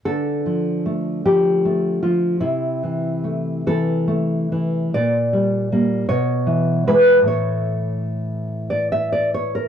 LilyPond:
\new Staff \with { instrumentName = "Nylon-string guitar" } { \time 6/8 \key d \minor \tempo 4. = 50 << { a'4. g'4 f'8 | e'4. a'4. | d''4. cis''4 b'8 | cis''4. r16 d''16 e''16 d''16 cis''16 bes'16 | } \\ { d8 f8 a8 f8 a8 f8 | c8 e8 a8 e8 a8 e8 | bes,8 g8 <g bes>8 b,8 e8 <e gis>8 | <a, e a>2. | } >> }